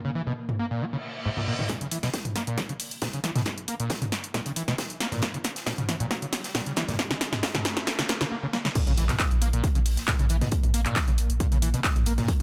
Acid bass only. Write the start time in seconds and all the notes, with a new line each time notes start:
0.05 C#3
0.15 E3
0.27 B2
0.59 A#3
0.71 A#2
0.81 A#3
0.93 C#3
1.26 G#2
1.37 A#2
1.48 A#2
1.59 D#3
1.69 A#2
1.81 C#3
1.92 E3
2.03 B2
2.36 A#3
2.47 A#2
2.58 A#3
2.69 C#3
3.02 A#2
3.14 C#3
3.24 E3
3.36 B2
3.68 A#3
3.80 A#2
3.90 A#3
4.02 C#3
4.34 A#2
4.46 C#3
4.56 E3
4.68 B2
5.01 A#3
5.12 A#2
5.23 A#3
5.34 C#3
5.67 A#2
5.78 C#3
5.89 E3
6.00 A#2
6.11 A#3
6.22 C#3
6.55 A#2
6.67 C#3
6.77 E3
6.89 A#2
6.99 A#3
7.11 C#3
7.43 A#3
7.55 C#3
7.87 A#3
7.99 C#3
8.09 A#3
8.21 C#3
8.31 A#3
8.43 C#3
8.53 A#3
8.65 C#3
8.76 A#2
8.87 C#3
8.98 E3
9.09 B2
9.42 A#3
9.53 A#2
9.64 A#3
9.75 C#3
10.08 A#2
10.20 C#3
10.30 E3
10.42 B2
10.74 A#3
10.86 A#2
10.96 A#3
11.08 C#3
11.40 A#2
11.52 C#3
11.62 E3
11.74 B2
12.06 A#3
12.18 A#2
12.28 A#3